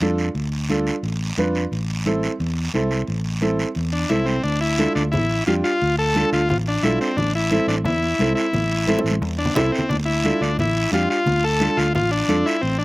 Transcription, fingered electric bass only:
0.01 0.28 F2 medium
0.35 0.89 D2 medium
1.03 1.31 A1 loud
1.38 1.65 F2 medium
1.72 2.26 A1 medium
2.40 2.67 E2 loud
2.74 3.02 C2 medium
3.08 3.63 A1 medium
3.76 4.04 E2 loud
4.11 4.38 C2 medium
4.44 4.85 D2 medium
4.96 5.15 D2 medium
5.13 5.40 A1 loud
5.47 5.61 F2 medium
5.82 6.22 D2 loud
6.32 6.51 D2 medium
6.50 6.77 A1 medium
6.83 6.97 B1 medium
7.17 7.58 A1 medium
7.67 7.84 A1 medium
7.84 8.12 E2 medium
8.19 8.33 C2 medium
8.53 8.94 A1 loud
9.04 9.22 A1 loud
9.22 9.49 E2 loud
9.56 9.69 C2 medium
9.90 10.31 D2 medium
10.41 10.59 D2 medium
10.58 10.85 A1 loud
10.92 11.06 F2 medium
11.26 11.67 D2 medium
11.77 11.96 D2 medium
11.94 12.22 A1 medium
12.28 12.42 F2 medium
12.63 12.85 A1 medium

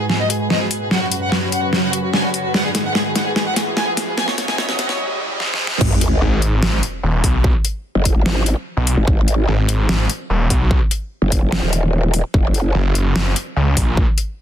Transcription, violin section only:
0.10 0.19 G#4 medium
0.20 0.28 D#5 medium
0.30 0.39 G#4 medium
0.40 0.49 G#4 medium
0.50 0.58 D#5 medium
0.61 0.70 G#4 medium
0.71 0.80 G#4 medium
0.81 0.90 G#4 medium
0.91 0.99 F#5 medium
1.01 1.11 F#4 medium
1.12 1.21 F#4 medium
1.22 1.30 F#5 medium
1.32 1.41 F#4 medium
1.42 1.51 F#4 medium
1.52 1.60 F#5 medium
1.63 1.72 F#4 medium
1.73 1.82 F#4 medium
1.83 1.91 F#5 medium
1.93 2.02 F#4 medium
2.03 2.13 F#4 medium
2.14 2.22 G#5 medium
2.24 2.33 F#4 medium
2.34 2.43 F#4 medium
2.44 2.53 F#4 medium
2.54 2.62 F#5 loud
2.65 2.74 G#4 medium
2.75 2.84 G#4 medium
2.85 2.93 F#5 medium
2.95 3.04 G#4 medium
3.05 3.15 G#4 medium
3.16 3.24 F#5 medium
3.26 3.35 G#4 medium
3.36 3.45 G#4 medium
3.46 3.54 F#5 medium
3.56 3.65 G#4 medium
3.67 3.76 G#4 medium
3.77 3.85 G#5 medium
3.87 3.96 G#4 medium
3.97 4.06 G#4 medium
4.07 4.17 G#4 medium
4.18 4.26 G#5 loud
4.28 4.37 C#5 medium
4.38 4.47 C#5 medium
4.48 4.56 G#5 medium
4.58 4.68 C#5 medium
4.69 4.78 C#5 medium
4.79 4.87 F#5 loud
4.89 4.98 C#5 medium

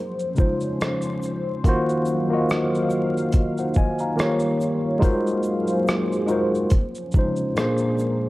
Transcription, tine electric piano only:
0.35 1.47 C#3 medium
0.35 1.48 G#3 medium
0.35 1.49 D#4 medium
0.39 1.49 F4 medium
0.39 1.50 C5 medium
1.64 2.20 D#3 loud
1.64 2.21 A#3 loud
1.64 2.21 F4 loud
1.64 2.22 F#4 loud
1.69 2.23 C5 loud
2.29 2.83 D#3 medium
2.29 2.83 A#3 medium
2.29 2.84 F4 medium
2.33 2.85 F#4 medium
2.33 2.85 D#5 medium
3.59 3.76 C5 medium
3.59 3.76 F#5 medium
3.77 3.99 D#5 medium
3.77 3.99 G#5 medium
4.00 4.40 F5 medium
4.00 4.40 A#5 medium
4.16 4.91 D#3 medium
4.16 4.92 A#3 medium
4.16 4.92 F4 medium
4.16 4.93 G4 medium
4.21 4.94 C#5 loud
4.99 6.12 G#3 loud
4.99 6.13 D#4 loud
4.99 6.13 F4 loud
4.99 6.14 F#4 loud
5.03 6.14 A#4 medium
5.03 6.15 C5 loud
6.26 6.70 G#3 medium
6.26 6.70 D#4 medium
6.26 6.71 F4 medium
6.26 6.71 F#4 medium
6.30 6.72 A#4 medium
6.30 6.72 C5 medium
7.13 7.56 C#3 medium
7.13 7.56 G#3 medium
7.13 7.57 D#4 medium
7.13 7.58 F4 medium
7.19 7.58 C5 medium
7.55 8.29 A#2 medium
7.55 8.29 A#3 medium
7.55 8.29 D4 medium
7.59 8.29 G#4 medium
7.59 8.29 C5 medium

